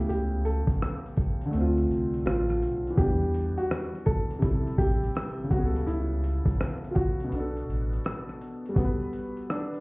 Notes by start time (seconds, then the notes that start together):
Already playing: C#3 A3 B3 G4
0.09 C#2 G4, closed hi-hat
0.45 A4, closed hi-hat
0.67 kick, closed hi-hat
0.82 cross-stick, closed hi-hat
1.06 closed hi-hat
1.17 kick, closed hi-hat
1.41 closed hi-hat
1.45 D3
1.51 D2 A3, closed hi-hat
1.56 C4
1.61 F4
1.78 closed hi-hat
1.90 C2, closed hi-hat
2.14 closed hi-hat
2.26 A1 F4, cross-stick, closed hi-hat
2.49 cross-stick, closed hi-hat
2.62 B1, closed hi-hat
2.87 E3, closed hi-hat
2.96 E2 B3 G4, kick, closed hi-hat, shaker
3.01 D4
3.06 G3
3.22 shaker
3.34 closed hi-hat
3.57 F#4, closed hi-hat, shaker
3.70 cross-stick, closed hi-hat, shaker
3.94 closed hi-hat, shaker
4.06 A4, kick, closed hi-hat, shaker
4.30 closed hi-hat, shaker
4.39 C2 C3 G3, kick, closed hi-hat, shaker
4.44 E4 A4
4.67 closed hi-hat, shaker
4.78 A1 G4, kick, closed hi-hat, shaker
5.02 closed hi-hat, shaker
5.15 cross-stick, closed hi-hat, shaker
5.39 shaker
5.44 C#3
5.49 C#2 G3 F#4, kick, closed hi-hat, shaker
5.54 B3
5.59 G#4
5.65 A4
5.75 closed hi-hat, shaker
5.87 C#2 E4, closed hi-hat
6.24 closed hi-hat
6.46 kick, closed hi-hat
6.61 cross-stick, closed hi-hat
6.84 closed hi-hat
6.91 F4 F#4
6.95 kick, closed hi-hat
7.20 closed hi-hat
7.24 B2
7.29 B1 B3, closed hi-hat
7.34 D4
7.40 A4
7.57 closed hi-hat
7.69 A1, closed hi-hat
7.93 closed hi-hat
8.05 cross-stick, closed hi-hat
8.29 cross-stick
8.41 closed hi-hat
8.66 G3, closed hi-hat
8.74 B3 F#4, kick, closed hi-hat
8.79 A4
8.84 B4
9.13 closed hi-hat
9.37 closed hi-hat
9.50 D4, cross-stick, closed hi-hat
9.74 closed hi-hat